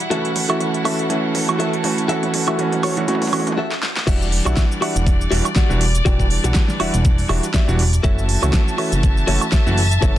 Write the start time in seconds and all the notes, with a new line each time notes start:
Already playing: E4 F#5
0.00 closed hi-hat
0.10 E3 A3 C#4 F#4 A4 E5, closed hi-hat, mid tom
0.25 closed hi-hat
0.36 open hi-hat, mid tom
0.49 E3 A3 C#4 F#4 A4 E5, high woodblock
0.60 closed hi-hat, mid tom
0.74 muted clean electric guitar stroke, closed hi-hat
0.84 E3 A3 C#4 F#4 A4 E5, open hi-hat, mid tom, high woodblock
0.99 closed hi-hat
1.09 E3 A3 C#4 F#4, closed hi-hat, mid tom
1.35 open hi-hat, mid tom
1.48 E3 A3 C#4 F#4, closed hi-hat, high woodblock
1.59 F#4 A4 E5, closed hi-hat, mid tom
1.73 closed hi-hat
1.84 E3 A3 C#4 F#4, muted clean electric guitar stroke, open hi-hat, mid tom
1.98 closed hi-hat
2.08 E3 A3 C#4 F#4 A4 E5, closed hi-hat, mid tom
2.23 closed hi-hat, mid tom
2.34 open hi-hat, mid tom
2.47 E3 A3 C#4 F#4 A4 E5, closed hi-hat, mid tom, high woodblock
2.58 E3 A3 C#4 F#4, closed hi-hat, mid tom
2.72 muted clean electric guitar stroke, closed hi-hat, mid tom
2.83 F#4 A4 C#5, open hi-hat, mid tom, high woodblock
2.97 E3 A3 C#4 F#4, closed hi-hat, mid tom
3.07 E3 A3 C#4 F#4, closed hi-hat, mid tom
3.15 mid tom
3.22 open hi-hat, mid tom
3.27 mid tom
3.32 E3 A3 C#4 F#4, open hi-hat, mid tom, high woodblock
3.40 mid tom
3.47 closed hi-hat, mid tom
3.52 mid tom
3.58 F#4 A4 E5
3.72 snare
3.82 muted clean electric guitar stroke, snare
3.97 snare
4.07 E1 E3 G3 D4 F#4 G4 D5 E5 F#5, kick, closed hi-hat, crash, cabasa
4.22 cabasa
4.32 open hi-hat
4.45 B1 E3 G3 D4 F#4 G4 D5 E5 F#5, closed hi-hat, cabasa, high woodblock
4.57 kick, snare, closed hi-hat, cabasa
4.72 cabasa
4.81 E3 G3 D4 F#4 G4 D5 E5 F#5, open hi-hat, high woodblock
4.96 E1, closed hi-hat, cabasa
5.06 muted clean electric guitar stroke, kick, closed hi-hat, cabasa
5.21 cabasa
5.30 E1 E3 G3 D4 F#4 G4 D5 E5, open hi-hat
5.45 closed hi-hat, cabasa, high woodblock
5.55 F#4 G4 D5 F#5, kick, snare, closed hi-hat, cabasa
5.69 E1 E3 G3 D4 F#4, cabasa
5.81 muted clean electric guitar stroke, open hi-hat
5.95 closed hi-hat, cabasa
6.05 E1 E3 G3 D4 F#4 G4 D5 G5, kick, closed hi-hat, cabasa
6.20 kick, cabasa
6.30 open hi-hat
6.44 B1 E3 G3 D4 F#4 G4 D5 F#5, closed hi-hat, cabasa
6.54 kick, snare, closed hi-hat, cabasa
6.68 snare, cabasa
6.79 E1 E3 G3 D4 F#4 G4 D5 E5 F#5, open hi-hat, high woodblock
6.94 E1, closed hi-hat, cabasa
7.05 muted clean electric guitar stroke, kick, closed hi-hat, cabasa
7.18 open hi-hat, cabasa
7.29 E1 E3 G3 D4 F#4 G4 D5 E5, open hi-hat, high woodblock
7.43 closed hi-hat, cabasa
7.54 F#4 G4 D5 E5, kick, snare, closed hi-hat, cabasa
7.68 E1 E3 G3 D4 F#4, cabasa
7.79 muted clean electric guitar stroke, open hi-hat
7.93 closed hi-hat, cabasa
8.03 F#1 E3 A3 C#4 F#4 A4 C#5 E5 A5, kick, closed hi-hat, cabasa
8.18 cabasa
8.29 open hi-hat
8.42 C#2 E3 A3 C#4 F#4 A4 C#5 E5, closed hi-hat, cabasa, high woodblock
8.53 kick, snare, closed hi-hat, cabasa
8.68 cabasa
8.78 E3 A3 C#4 F#4 A4 C#5 E5, open hi-hat, high woodblock
8.92 F#1, closed hi-hat, cabasa
9.03 muted clean electric guitar stroke, kick, closed hi-hat, cabasa
9.17 cabasa
9.27 F#1 E3 A3 C#4 F#4 A4 C#5 E5, open hi-hat
9.41 closed hi-hat, cabasa, high woodblock
9.52 F#4 A4 C#5 E5, kick, snare, closed hi-hat, cabasa
9.66 F#1 E3 A3 C#4 F#4, cabasa
9.77 muted clean electric guitar stroke, open hi-hat
9.91 closed hi-hat, cabasa
10.02 F#1 E3 A3 C#4 F#4 A4 C#5 E5, kick, closed hi-hat, cabasa